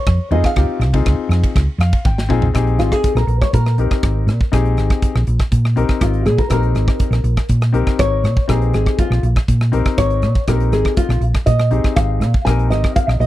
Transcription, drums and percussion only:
0.06 kick loud
0.06 cross-stick medium
0.06 ride medium
0.31 ride medium
0.44 kick medium
0.44 cross-stick medium
0.44 ride medium
0.56 kick medium
0.56 cross-stick medium
0.56 ride medium
0.81 cross-stick medium
0.81 ride medium
0.94 kick medium
0.94 ride medium
1.06 kick loud
1.06 cross-stick medium
1.06 ride medium
1.31 cross-stick medium
1.31 ride medium
1.44 kick medium
1.44 ride medium
1.56 kick medium
1.56 cross-stick medium
1.56 ride medium
1.80 cross-stick medium
1.80 ride medium
1.93 kick medium
1.93 ride medium
2.05 kick loud
2.05 high tom medium
2.18 snare medium
2.30 kick medium
2.42 floor tom medium
2.55 kick medium
2.55 cross-stick medium
2.55 closed hi-hat medium
2.67 closed hi-hat soft
2.79 cross-stick medium
2.79 closed hi-hat soft
2.92 kick medium
2.92 cross-stick medium
3.04 kick loud
3.04 closed hi-hat medium
3.16 cross-stick medium
3.16 closed hi-hat soft
3.28 closed hi-hat medium
3.41 kick medium
3.41 cross-stick medium
3.41 closed hi-hat soft
3.53 kick medium
3.53 closed hi-hat medium
3.66 cross-stick medium
3.66 closed hi-hat soft
3.78 closed hi-hat medium
3.91 kick medium
3.91 cross-stick medium
3.91 closed hi-hat soft
4.03 kick loud
4.03 cross-stick medium
4.03 closed hi-hat medium
4.28 cross-stick medium
4.28 closed hi-hat medium
4.41 kick medium
4.53 kick medium
4.53 cross-stick medium
4.53 closed hi-hat medium
4.65 closed hi-hat soft
4.77 cross-stick medium
4.77 closed hi-hat medium
4.90 kick medium
4.90 cross-stick medium
4.90 closed hi-hat soft
5.02 kick loud
5.02 closed hi-hat medium
5.16 cross-stick medium
5.27 closed hi-hat medium
5.39 kick medium
5.39 cross-stick medium
5.39 closed hi-hat soft
5.52 kick medium
5.52 closed hi-hat medium
5.65 cross-stick medium
5.77 closed hi-hat medium
5.89 kick medium
5.89 cross-stick medium
5.89 closed hi-hat soft
6.01 kick loud
6.01 cross-stick medium
6.01 closed hi-hat medium
6.14 closed hi-hat soft
6.26 cross-stick medium
6.26 closed hi-hat medium
6.38 kick medium
6.38 closed hi-hat soft
6.50 kick medium
6.50 cross-stick medium
6.50 closed hi-hat medium
6.63 closed hi-hat soft
6.75 cross-stick medium
6.75 closed hi-hat medium
6.88 kick medium
6.88 cross-stick medium
6.99 kick loud
6.99 closed hi-hat medium
7.12 cross-stick medium
7.12 closed hi-hat soft
7.24 closed hi-hat medium
7.37 kick medium
7.37 cross-stick medium
7.37 closed hi-hat soft
7.49 kick medium
7.49 closed hi-hat medium
7.61 cross-stick medium
7.61 closed hi-hat soft
7.74 closed hi-hat medium
7.87 kick medium
7.87 cross-stick medium
7.87 closed hi-hat soft
7.99 kick loud
7.99 cross-stick medium
7.99 closed hi-hat medium
8.24 cross-stick medium
8.24 closed hi-hat medium
8.37 kick medium
8.49 kick medium
8.49 cross-stick medium
8.49 closed hi-hat medium
8.62 closed hi-hat soft
8.74 cross-stick medium
8.74 closed hi-hat medium
8.86 kick medium
8.86 cross-stick medium
8.86 closed hi-hat soft
8.98 kick loud
8.98 closed hi-hat medium
9.12 cross-stick medium
9.23 closed hi-hat medium
9.36 kick medium
9.36 cross-stick medium
9.36 closed hi-hat soft
9.48 kick medium
9.48 closed hi-hat medium
9.61 cross-stick medium
9.73 closed hi-hat medium
9.85 kick medium
9.85 cross-stick medium
9.85 closed hi-hat soft
9.98 kick loud
9.98 cross-stick medium
9.98 closed hi-hat medium
10.10 closed hi-hat soft
10.22 cross-stick medium
10.22 closed hi-hat medium
10.35 kick medium
10.35 closed hi-hat soft
10.47 kick medium
10.47 cross-stick medium
10.47 closed hi-hat medium
10.60 closed hi-hat soft
10.72 cross-stick medium
10.72 closed hi-hat medium
10.85 kick medium
10.85 cross-stick medium
10.97 kick loud
10.97 closed hi-hat medium
11.10 cross-stick medium
11.10 closed hi-hat soft
11.22 closed hi-hat medium
11.34 kick medium
11.34 cross-stick medium
11.34 closed hi-hat soft
11.46 kick medium
11.46 closed hi-hat medium
11.59 cross-stick medium
11.59 closed hi-hat soft
11.71 closed hi-hat medium
11.84 kick medium
11.84 cross-stick medium
11.84 closed hi-hat soft
11.96 kick loud
11.96 cross-stick medium
11.96 closed hi-hat medium
12.21 cross-stick medium
12.21 closed hi-hat medium
12.34 kick medium
12.47 kick medium
12.47 cross-stick medium
12.47 closed hi-hat medium
12.59 closed hi-hat soft
12.71 cross-stick medium
12.71 closed hi-hat medium
12.84 kick medium
12.84 cross-stick medium
12.84 closed hi-hat soft
12.96 kick loud
12.96 closed hi-hat medium
13.09 cross-stick medium
13.21 closed hi-hat medium

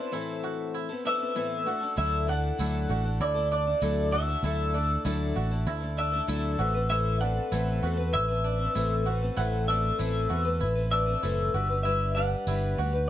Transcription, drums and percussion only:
2.59 tambourine medium
3.82 tambourine loud
5.05 tambourine loud
6.29 tambourine loud
7.52 tambourine loud
8.76 tambourine medium
9.99 tambourine medium
11.23 tambourine medium
12.47 tambourine medium

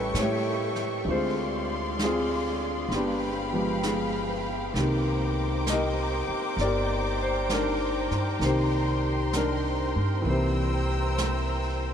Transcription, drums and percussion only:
0.15 brush sweep soft
0.15 snare soft
0.15 hi-hat pedal soft
0.76 snare soft
1.07 brush sweep soft
1.99 brush sweep soft
1.99 snare soft
1.99 hi-hat pedal soft
2.91 brush sweep soft
2.91 snare soft
3.83 brush sweep soft
3.83 snare soft
3.83 hi-hat pedal soft
4.75 brush sweep soft
4.75 snare soft
5.67 brush sweep soft
5.67 snare soft
5.67 hi-hat pedal medium
6.58 brush sweep soft
6.58 snare soft
7.50 brush sweep soft
7.50 snare soft
7.50 hi-hat pedal soft
8.11 snare soft
8.41 brush sweep soft
8.41 snare soft
9.33 brush sweep soft
9.33 snare soft
9.33 hi-hat pedal soft
10.25 brush sweep soft
11.18 brush sweep soft
11.18 snare soft
11.18 hi-hat pedal soft

